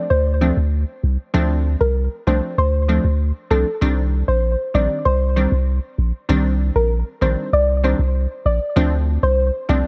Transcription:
0.10 sub bass D2, synth pluck C5
0.41 synth stab F3 A3 C4 D4
0.57 sub bass D2
1.03 sub bass C2
1.34 sub bass D2, synth stab F3 A3 C4 D4
1.81 sub bass C2, synth pluck A#4
2.27 sub bass C2, synth stab F3 A3 C4 D4, synth pluck C5
2.58 sub bass D2, synth pluck C5
2.88 synth stab F3 A3 C4 D4
3.04 sub bass D2
3.50 sub bass C2, synth stab F3 A3 C4 D4, synth pluck A4
3.81 sub bass C2, synth stab D#3 G3 C4 D4
4.28 sub bass A#1, synth pluck C5
4.74 sub bass A#1, synth stab D#3 G3 C4 D4, synth pluck D5
5.05 sub bass C2, synth pluck C5
5.36 synth stab D#3 G3 C4 D4
5.52 sub bass C2
5.98 sub bass A#1
6.29 sub bass C2, synth stab D#3 G3 C4 D4
6.75 sub bass A#1, synth pluck A#4
7.21 sub bass A#1, synth stab D#3 G3 C4 D4, synth pluck C5
7.53 sub bass C2, synth pluck D5
7.84 synth stab D#3 G3 C4 D4, synth pluck C5
7.99 sub bass C2
8.45 sub bass A#1, synth pluck D5
8.76 sub bass D2, synth stab F3 A3 C4 D4
9.23 sub bass C2, synth pluck C5
9.69 sub bass C2, synth stab F3 A3 C4 D4, synth pluck D5

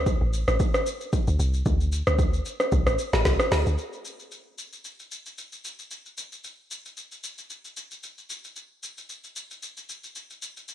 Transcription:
Already playing: log drum bass D2
0.06 kick, shaker
0.21 log drum bass A1
0.33 shaker
0.48 log drum bass A1, cross-stick, shaker
0.60 kick, shaker
0.74 cross-stick, shaker
0.86 shaker
1.01 shaker
1.13 kick, shaker
1.27 log drum bass D2, shaker
1.39 log drum bass C2, shaker
1.54 shaker
1.66 log drum bass D2, kick, shaker
1.80 shaker
1.92 shaker
2.07 log drum bass D2, cross-stick, shaker
2.19 kick, shaker
2.33 shaker
2.45 shaker
2.60 cross-stick, shaker
2.72 log drum bass C2, kick, shaker
2.87 log drum bass A1, cross-stick, shaker
2.99 shaker
3.13 log drum bass A1, snare, shaker
3.25 log drum bass C2, kick, snare, shaker
3.40 cross-stick, shaker
3.52 log drum bass D2, snare, open hi-hat, shaker
3.66 log drum bass D2, shaker
3.78 shaker
3.93 shaker
4.05 shaker
4.20 shaker
4.31 shaker
4.58 shaker
4.73 shaker
4.85 shaker
4.99 shaker
5.11 shaker
5.26 shaker
5.38 shaker
5.52 shaker
5.64 shaker
5.79 shaker
5.91 shaker
6.06 shaker
6.17 shaker
6.32 shaker
6.44 shaker
6.71 shaker
6.85 shaker
6.97 shaker
7.12 shaker
7.24 shaker
7.38 shaker
7.50 shaker
7.65 shaker
7.77 shaker
7.91 shaker
8.03 shaker
8.18 shaker
8.30 shaker
8.44 shaker
8.56 shaker
8.83 shaker
8.98 shaker
9.09 shaker
9.24 shaker
9.36 shaker
9.51 shaker
9.63 shaker
9.77 shaker
9.89 shaker
10.04 shaker
10.15 shaker
10.30 shaker
10.42 shaker
10.57 shaker
10.68 shaker

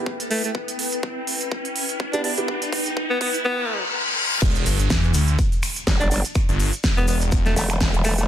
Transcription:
Already playing: ambient pad E4 B4 G5, riser
0.06 kick
0.20 closed hi-hat
0.31 alto saxophone A3, open hi-hat
0.44 alto saxophone A3, closed hi-hat
0.55 kick
0.68 closed hi-hat
0.79 open hi-hat
0.92 closed hi-hat
1.03 kick
1.27 open hi-hat
1.41 closed hi-hat
1.52 kick
1.65 closed hi-hat
1.76 open hi-hat
1.89 closed hi-hat
2.00 kick
2.13 grand piano B3 E4 G4, alto saxophone D4, closed hi-hat
2.24 alto saxophone D4, open hi-hat
2.38 grand piano B3 E4 G4, closed hi-hat
2.48 grand piano B3 E4 G4, kick
2.62 closed hi-hat
2.73 kick, open hi-hat
2.86 closed hi-hat
2.97 kick
3.10 alto saxophone B3
3.21 alto saxophone B3, kick, open hi-hat
3.34 closed hi-hat
3.45 alto saxophone B3, reverse cymbal
4.42 detuned saw bass E1, kick, crash, impact, maracas
4.55 closed hi-hat, maracas
4.66 detuned saw bass G1, open hi-hat, maracas
4.80 closed hi-hat, maracas
4.90 detuned saw bass E2, kick, snare, maracas
5.04 maracas
5.14 detuned saw bass D2, open hi-hat, maracas
5.28 closed hi-hat, maracas
5.39 kick, maracas
5.52 closed hi-hat, maracas
5.63 finger snap, open hi-hat, maracas
5.76 closed hi-hat, maracas
5.87 wobble bass G1, kick, snare, maracas
6.00 alto saxophone D4, closed hi-hat, maracas
6.11 alto saxophone D4, open hi-hat, maracas
6.25 closed hi-hat, maracas
6.35 finger snap, kick, maracas
6.49 detuned saw bass G1, closed hi-hat, maracas
6.60 open hi-hat, maracas
6.73 closed hi-hat, maracas
6.84 kick, snare, maracas
6.97 detuned saw bass E1, alto saxophone B3, closed hi-hat, maracas
7.08 alto saxophone B3, open hi-hat, maracas
7.21 closed hi-hat, maracas
7.31 detuned saw bass E1, kick, maracas
7.45 alto saxophone A3, snare, closed hi-hat, maracas
7.56 wobble bass E1, alto saxophone A3, open hi-hat, maracas
7.70 finger snap, closed hi-hat, maracas
7.81 kick, snare, maracas
7.94 wobble bass E1, closed hi-hat, maracas
8.04 alto saxophone A3, finger snap, open hi-hat, maracas
8.18 alto saxophone A3, closed hi-hat, maracas

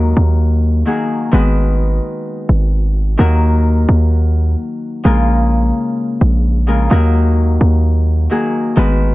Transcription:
Already playing: 808-style bass D#2, harp D#3 F#3 A#3 F#4 A#4
0.17 808-style bass D#2
0.85 harp D#3 F#3 A#3 F#4 G#4
1.31 808-style bass G#1, harp D#3 G#3 B3 F#4 B4
2.49 808-style bass G#1
3.17 808-style bass D#2, harp D#3 F#3 A#3 F#4 A#4
3.89 808-style bass D#2
5.04 808-style bass A#1, harp C#3 G#3 A#3 F4 A#4
6.21 808-style bass A#1
6.67 harp C#3 G#3 A#3 F4 A#4
6.90 808-style bass D#2, harp D#3 F#3 A#3 F#4 A#4
7.61 808-style bass D#2
8.30 harp D#3 F#3 A#3 F#4 G#4
8.76 808-style bass G#1, harp D#3 G#3 B3 F#4 B4

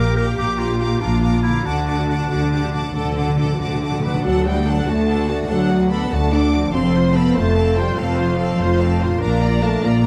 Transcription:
Already playing: double bass section A#1, cello section A#2, harp A#2 F3 D4 F4 A#4, viola section G4, clarinet A#4, violin section F5 A#5 D6
0.16 clarinet A#4, violin section F5 A#5 D6
0.38 double bass section A#1, cello section A#2, clarinet G4, violin section F5 A#5 D6
0.57 clarinet F4, violin section F5 A#5 D6
0.80 violin section F5 A#5 D6
1.01 double bass section A#1, cello section A#2, clarinet D4, viola section F4, violin section F5 A#5 D6
1.23 violin section F5 A#5 D6
1.42 clarinet E4, violin section F5 A#5 D6
1.49 harp D3
1.53 harp D4
1.58 harp F#4
1.62 double bass section D2, cello section D3, clarinet D4, harp A4, violin section D6
1.66 timpani D3, viola section F#4, violin section F#5 A5
1.75 timpani D3
1.87 violin section F#5 A5 D6
1.97 timpani D3
2.05 timpani D3
2.09 timpani D3, violin section F#5 A5 D6
2.20 timpani D3
2.28 double bass section D2, timpani D3, cello section D3, viola section F#4, violin section F#5 A5 D6
2.35 timpani D3
2.44 timpani D3
2.52 timpani D3, viola section G4, violin section F#5 A5 D6
2.67 timpani D3
2.73 timpani D3, viola section F#4, violin section F#5 A5 D6
2.82 timpani D3
2.90 timpani D3, viola section A4
2.94 double bass section D2, cello section D3, timpani D3, violin section F#5 A5 D6
3.04 timpani D3
3.12 timpani D3, violin section D6
3.18 timpani D3, violin section F#5 A5
3.28 timpani D3
3.36 timpani D3, viola section A4, violin section D6
3.41 timpani D3, violin section F#5 A5
3.52 timpani D3
3.59 double bass section D2, cello section D3, timpani D3, viola section F#4, violin section F#5 A5 D6
3.68 timpani D3
3.75 timpani D3
3.82 timpani D3, violin section F#5 A5 D6
3.92 timpani D3
4.00 timpani D3, viola section B4, violin section D6
4.05 harp D3, timpani D3, violin section F#5 A5
4.10 harp D4
4.14 timpani D3, harp F#4
4.19 harp A4
4.23 double bass section D2, cello section D2, french horn section F#3, viola section D4 A4, violin section F#5 A5
4.44 french horn section G3, viola section F#4, violin section G5
4.49 violin section D5 F#5
4.65 french horn section F#3, viola section D4 A4, violin section F#5 A5
4.86 double bass section D2, cello section D2, french horn section A3, viola section F#4, violin section D5 F#5 A5
5.07 viola section D4 A4, violin section F#5 A5
5.28 french horn section A3, viola section F#4, violin section D5 F#5 A5
5.48 cello section D2, double bass section D2, french horn section F#3, viola section D4 A4, violin section F#5 A5
5.70 viola section F#4, violin section D5 F#5
5.90 french horn section B3, viola section D4 A4, violin section F#5 A5 B5
6.11 double bass section D2, cello section D2, french horn section A3, viola section F#4, violin section D5 F#5 A5
6.31 french horn section D4, viola section D4 A4, violin section F#5 A5 D6
6.52 harp F3, viola section F#4, violin section D5 F#5
6.61 harp C4
6.65 harp F4
6.69 double bass section F1, harp A4, violin section F5 A5
6.73 cello section F2, french horn section C4, viola section C4 A4, violin section C6
6.93 viola section F4 C5, violin section C5 C6
7.13 french horn section B3, viola section C4 A4, violin section F5 A5 B5
7.35 double bass section F1, cello section F2, french horn section A3, viola section F4 C5, violin section C5 A5 C6
7.56 viola section C4 A4, violin section F5 A5
7.77 french horn section G3, viola section F4 C5, violin section C5 G5 C6
7.97 double bass section F1, cello section F2, french horn section F3, viola section C4 A4, violin section F5 A5
8.18 viola section F4 C5, violin section C5 C6
8.38 viola section C4 A4, violin section F5 A5
8.59 double bass section F1, cello section F2, viola section F4 C5, violin section C5 C6
8.80 viola section C4 A4, violin section F5 A5
9.01 harp A#2, viola section F4 C5, violin section C5 C6
9.09 harp D4
9.13 harp F4
9.18 cello section A#2, harp A#4, viola section A#4
9.22 double bass section A#1, french horn section A#3, viola section D4, violin section F5 A#5
9.42 viola section F4 D5, violin section D5 A#5
9.63 french horn section A3, viola section D4 A#4, violin section F5 A5
9.83 double bass section A#1, cello section A#2, french horn section A#3, viola section F4 D5, violin section D5 A#5

